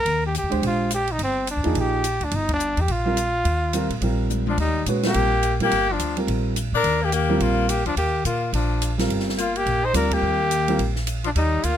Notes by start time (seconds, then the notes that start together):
0.00 A#4
0.05 D#2, ride
0.26 G4
0.35 G4, hi-hat pedal, ride
0.43 F2
0.50 D2 G#3 D4 G4 C5, ride
0.62 A#1, ride
0.66 F4
0.91 G4, hi-hat pedal, ride
1.08 ride
1.12 D#4
1.18 G1, ride
1.23 C4
1.47 D4, hi-hat pedal, ride
1.57 D2
1.64 E2 F3 A#3 D#4 G#4, ride
1.75 A#1, ride
1.80 G4
2.04 hi-hat pedal, ride
2.20 D2 D4, ride
2.31 G1 D#4, ride
2.49 kick, ride
2.53 D4
2.60 hi-hat pedal
2.77 E2 G4, ride
2.88 A#1 F4, ride
3.05 G3 C4 F4 A#4
3.17 hi-hat pedal, ride
3.45 D#2, ride
3.73 G3 C4 F4 A#4, hi-hat pedal, ride
3.90 A#2, ride
4.01 A#1 G3 C4 F4 A#4, ride
4.30 hi-hat pedal, high tom
4.47 F3 D4, high tom
4.58 D#2 G3 D#4, kick, ride
4.86 A#2 G#3 C#4 F#4 B4, hi-hat pedal, ride
5.03 G3 A#3 C4 F4 G4 A#4, snare, ride
5.14 A#1, ride
5.43 hi-hat pedal, ride
5.60 A#2 G3 A#3 C4 F4 A#4, ride
5.64 G4
5.71 G1, ride
5.90 F3 D4
5.99 D2, hi-hat pedal, ride
6.17 G3 C4 F4 A#4, ride
6.27 A#1, ride
6.56 hi-hat pedal, ride
6.72 A#2 D4 A#4
6.84 D#2, ride
7.02 A#3 G4
7.12 A#3 G4, hi-hat pedal, ride
7.29 G3 C4 F4 A#4
7.40 A#1 A#3 F4, ride
7.68 A#3 G4, hi-hat pedal, ride
7.86 D2 F3 D4, ride
7.96 D#2 A#3 G4, ride
8.25 A#2 A#3 F4, hi-hat pedal, ride
8.53 A#1 F3 D4, ride
8.82 hi-hat pedal, ride
8.98 G3 C4 F4 A#4, snare, ride
9.09 G1, ride
9.20 snare
9.29 snare
9.38 A#3 F4, hi-hat pedal, ride
9.55 A#3 G4, ride
9.66 A#1, ride
9.83 D#4 C5
9.93 D2 G3 C4 D4 F4 A#4, hi-hat pedal, ride
10.11 A#3 G4, kick, ride
10.22 D#2
10.51 hi-hat pedal, ride
10.68 G3 C4 F4 A#4, ride
10.79 A#1, ride
10.96 snare
11.07 hi-hat pedal, ride
11.24 F3 D4, ride
11.35 D#2 G3 D#4, ride
11.63 D2 A#3 F4, hi-hat pedal, ride